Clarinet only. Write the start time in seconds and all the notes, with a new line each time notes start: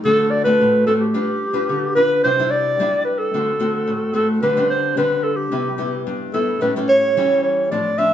0.05 A4
0.31 D5
0.44 B4
0.87 A4
0.99 G4
1.95 B4
2.24 C5
2.51 D5
3.05 B4
3.18 A4
4.15 A4
4.42 B4
4.70 C5
4.98 B4
5.24 A4
5.36 G4
6.34 A4
6.62 B4
6.89 C#5
7.44 C#5
7.71 D5
7.98 E5